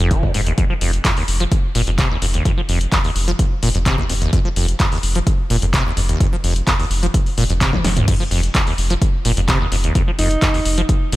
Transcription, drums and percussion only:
0.11 kick, closed hi-hat
0.23 kick
0.34 open hi-hat
0.47 closed hi-hat
0.58 kick, closed hi-hat
0.81 open hi-hat
0.93 closed hi-hat
1.05 kick, clap, closed hi-hat
1.17 open hi-hat
1.28 open hi-hat
1.40 closed hi-hat
1.52 kick, closed hi-hat
1.75 open hi-hat
1.87 closed hi-hat
1.98 kick, clap, closed hi-hat
2.22 open hi-hat
2.34 closed hi-hat
2.45 kick, closed hi-hat
2.69 open hi-hat
2.81 closed hi-hat
2.92 kick, clap, closed hi-hat
3.04 open hi-hat
3.16 open hi-hat
3.28 closed hi-hat
3.39 kick, closed hi-hat
3.63 open hi-hat
3.75 closed hi-hat
3.86 kick, clap, closed hi-hat
3.98 kick
4.09 open hi-hat
4.22 closed hi-hat
4.33 kick, closed hi-hat
4.56 open hi-hat
4.68 closed hi-hat
4.80 kick, clap, closed hi-hat
4.92 open hi-hat
5.03 open hi-hat
5.15 closed hi-hat
5.27 kick, closed hi-hat
5.50 open hi-hat
5.62 closed hi-hat
5.74 kick, clap, closed hi-hat
5.97 open hi-hat
6.09 closed hi-hat
6.20 kick, closed hi-hat
6.44 open hi-hat
6.56 closed hi-hat
6.67 kick, clap, closed hi-hat
6.79 open hi-hat
6.91 open hi-hat
7.03 closed hi-hat
7.14 kick, closed hi-hat
7.26 open hi-hat
7.38 open hi-hat
7.50 closed hi-hat
7.61 kick, clap, closed hi-hat
7.73 kick, high tom
7.84 snare, open hi-hat
7.97 closed hi-hat, mid tom
8.08 kick, closed hi-hat, crash
8.31 open hi-hat
8.43 closed hi-hat
8.55 kick, clap, closed hi-hat
8.67 open hi-hat
8.78 open hi-hat
8.90 closed hi-hat
9.02 kick, closed hi-hat
9.25 open hi-hat
9.37 closed hi-hat
9.48 kick, clap, closed hi-hat
9.72 open hi-hat
9.84 closed hi-hat
9.95 kick, closed hi-hat
10.19 open hi-hat
10.31 closed hi-hat
10.42 kick, clap, closed hi-hat
10.54 open hi-hat
10.65 open hi-hat
10.78 closed hi-hat
10.89 kick, closed hi-hat
11.12 open hi-hat

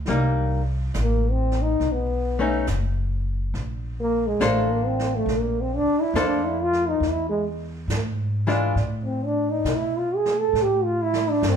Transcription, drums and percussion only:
0.06 brush sweep, snare
0.94 snare, hi-hat pedal
1.51 snare
1.81 brush sweep, snare
2.67 snare, hi-hat pedal
3.54 brush sweep, snare
4.41 snare, hi-hat pedal
4.99 snare
5.28 brush sweep, snare
6.15 snare, hi-hat pedal
6.73 snare
7.03 brush sweep, snare
7.90 snare, hi-hat pedal
8.48 snare
8.77 brush sweep, snare
9.65 snare, hi-hat pedal
10.26 snare
10.55 brush sweep, snare
11.14 snare
11.43 snare, hi-hat pedal

